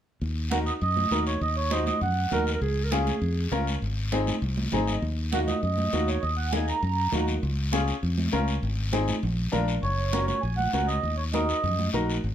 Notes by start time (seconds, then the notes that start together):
0.21 D#2, high conga, long guiro
0.51 D#4 F#4 A#4 F#5, high conga, short guiro
0.66 D#5, short guiro
0.81 F#2 D#5, high conga, long guiro
0.97 high conga
1.11 D#2 D#4 F#4 A#4, high conga, short guiro
1.27 C#5, short guiro
1.41 D#2 D#5, high conga, long guiro
1.57 C#5
1.71 D#4 F#4 C5 D#5, high conga, short guiro
1.86 D#5, high conga, short guiro
2.01 F#2 F#5, high conga, low conga, long guiro
2.31 D#2 D#4 F#4 A#4, high conga, low conga, short guiro
2.47 short guiro
2.54 A#4
2.61 C#2 G#4, high conga, long guiro
2.84 A#4
2.91 C#4 F4 G#4, high conga, short guiro
3.07 high conga, short guiro
3.22 F2, high conga, long guiro
3.52 C#2 C#4 F4 A#4, high conga, short guiro
3.67 short guiro
3.82 G#1, high conga, long guiro
4.12 C4 D#4 G#4, high conga, short guiro
4.27 high conga, short guiro
4.42 C2, high conga, long guiro
4.57 high conga
4.72 G#1 C4 D#4 G#4 A#5, high conga, low conga, short guiro
4.87 D#5, short guiro
5.02 D#2, high conga, long guiro
5.33 A#3 D#4 F#4 F#5, high conga, short guiro
5.47 D#5, high conga, short guiro
5.62 F#2 D#5, high conga, long guiro
5.78 high conga
5.93 D#2 A#3 D#4 F#4, high conga, short guiro
6.08 C#5, short guiro
6.22 D#2 D#5, high conga, long guiro
6.37 F#5
6.52 A#3 D#4 G#4 G#5, high conga, short guiro
6.67 A#5, short guiro
6.82 F#2 A#5, high conga, long guiro
7.12 D#2 A#3 D#4 F#4, high conga, low conga, short guiro
7.28 short guiro
7.43 C#2, high conga, long guiro
7.72 C#4 F4 G#4, high conga, short guiro
7.88 short guiro
8.03 F2, high conga, long guiro
8.18 high conga
8.32 C#2 C#4 F4 A#4, high conga, short guiro
8.48 short guiro
8.63 G#1, high conga, long guiro
8.92 C4 D#4 G#4, high conga, short guiro
9.08 high conga, short guiro
9.23 A#1, high conga, low conga, long guiro
9.52 A#1 D4 F4 A#4, high conga, low conga, short guiro
9.68 short guiro
9.83 F#1 C#5, high conga, long guiro
10.13 C#4 F#4 A#4, high conga, short guiro
10.27 C#5, high conga, short guiro
10.41 A#1 G#5, high conga, long guiro
10.57 F#5, high conga
10.73 C#2 C#4 F#4 A#4 F#5, high conga, short guiro
10.88 D#5, short guiro
11.03 D#2, high conga, long guiro
11.17 C#5
11.33 D#4 F#4 A#4 D#5, high conga, short guiro
11.49 short guiro
11.64 F#2, high conga, low conga, long guiro
11.79 high conga
11.93 A#1 D#4 F#4 A#4, high conga, low conga, short guiro
12.10 short guiro
12.24 G#1, high conga, long guiro